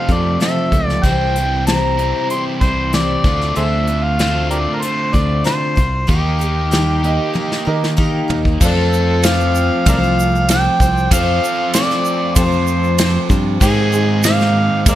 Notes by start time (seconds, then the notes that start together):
Already playing: F2 C3 F3 A3 C4 F4 F5
0.09 F2 C4 F4 A4 D5, kick, closed hi-hat
0.40 F3 A3 C4 F4 A4 E5, snare, closed hi-hat
0.72 C#2 C4 F4 A4, kick, closed hi-hat
0.86 D5, snare
1.03 C2 C3 E3 G3 C4 E4 C5 G5, kick, closed hi-hat
1.36 G3 C4 E4 C5, closed hi-hat
1.67 C3 E3 G3 C4 E4 C5 A#5, snare, closed hi-hat
1.97 C3 E3 G3 C4 E4, closed hi-hat
2.30 G3 C4 E4 C5 C6, closed hi-hat
2.61 C2 G3 C4 E4 C5, kick, closed hi-hat
2.93 C3 E3 G3 C4 E4 C5 D5, snare, closed hi-hat
3.24 D2 D3 A3 C4 D4 F4 C5, kick, closed hi-hat
3.41 snare
3.55 D2 D3 A3 C4 F4 G#4 C5 E5, closed hi-hat
3.87 C4 F4 C5, closed hi-hat
4.04 F5
4.19 D3 A3 C4 D4 F4 C5, snare, closed hi-hat
4.50 G4 A#4 D5, closed hi-hat
4.75 A#4
4.82 A3 C4 F4 C5, closed hi-hat
5.13 D2 C4 F4 C5 D5, kick, closed hi-hat
5.44 D3 A3 C4 F4 C5, snare, closed hi-hat
5.76 C2 C4 F4 C5, kick, closed hi-hat
6.07 D#2 D#3 G3 A#3 D#4 G4 A#4, kick, closed hi-hat
6.39 D#4 G4 A#4, closed hi-hat
6.71 D#3 G3 D#4 G4 A#4, snare, closed hi-hat
7.03 D#3 A#3 D#4 G4 D#5, closed hi-hat
7.34 G3 D#4 G4 A#4, high tom
7.52 snare
7.65 D#3 D#4 G4 A#4 D#5
7.84 snare
7.97 D#3 G3 D#4 G4 A#4, kick
8.28 D#2 D#4 G4 A#4, floor tom
8.45 kick
8.61 F2 F3 A3 C4 D4 F4 A4 C5, kick, crash, shaker
8.93 shaker
9.22 A3 C4 F4 C5, snare, ride bell, shaker
9.27 F5
9.40 shaker
9.55 shaker
9.85 C2 F3 A3 C4 F4 A#4 C5 D5 F5, kick, ride bell, shaker
10.03 shaker
10.20 shaker
10.35 shaker
10.49 A3 C4 F4 C5 G5, snare, ride bell, shaker
10.80 C2 C4 F4 C5, kick, shaker
10.98 shaker
11.11 F2 F3 A3 C4 F4 A4 C5 F5, kick, ride bell, shaker
11.44 C4 F4 C5, shaker
11.74 A3 C4 F4 C5 D5, snare, ride bell, shaker
11.91 snare, shaker
12.05 shaker
12.36 F2 F3 A3 C4 F4 G4 A4 C5, kick, ride bell, shaker
12.52 shaker
12.67 shaker
12.84 shaker
12.98 A3 C4 F4 C5, snare, ride bell, shaker
13.29 G2 C4 F4 C5, kick, shaker
13.61 G#2 D#3 G#3 A#3 C4 D#4 G#4 C5, kick, crash, shaker
13.92 D#4 G#4 C5, shaker
14.23 A#3 D#4 G#4 C5 F5, snare, ride bell, shaker
14.40 snare, shaker
14.86 D#2 G#3 A#3 D#4 G#4 A#4 C5 D5 F5, kick, ride bell, shaker